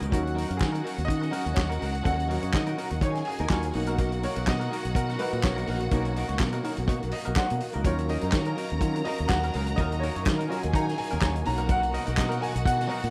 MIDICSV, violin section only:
0, 0, Header, 1, 2, 480
1, 0, Start_track
1, 0, Key_signature, -6, "minor"
1, 0, Tempo, 482315
1, 118, Time_signature, 4, 2, 24, 8
1, 13038, End_track
2, 0, Start_track
2, 0, Title_t, "Violin section"
2, 0, Program_c, 0, 48
2, 112, Note_on_c, 0, 78, 89
2, 113, Note_on_c, 0, 66, 74
2, 2962, Note_off_c, 0, 78, 0
2, 2963, Note_off_c, 0, 66, 0
2, 2997, Note_on_c, 0, 80, 92
2, 3001, Note_on_c, 0, 68, 70
2, 3708, Note_off_c, 0, 80, 0
2, 3710, Note_off_c, 0, 68, 0
2, 3722, Note_on_c, 0, 78, 89
2, 3723, Note_on_c, 0, 66, 79
2, 7527, Note_off_c, 0, 78, 0
2, 7528, Note_off_c, 0, 66, 0
2, 7801, Note_on_c, 0, 70, 74
2, 7806, Note_on_c, 0, 82, 85
2, 10402, Note_off_c, 0, 70, 0
2, 10404, Note_off_c, 0, 82, 0
2, 10432, Note_on_c, 0, 68, 74
2, 10433, Note_on_c, 0, 80, 90
2, 11377, Note_off_c, 0, 68, 0
2, 11378, Note_off_c, 0, 80, 0
2, 11389, Note_on_c, 0, 66, 83
2, 11389, Note_on_c, 0, 78, 82
2, 13038, Note_off_c, 0, 66, 0
2, 13038, Note_off_c, 0, 78, 0
2, 13038, End_track
0, 0, End_of_file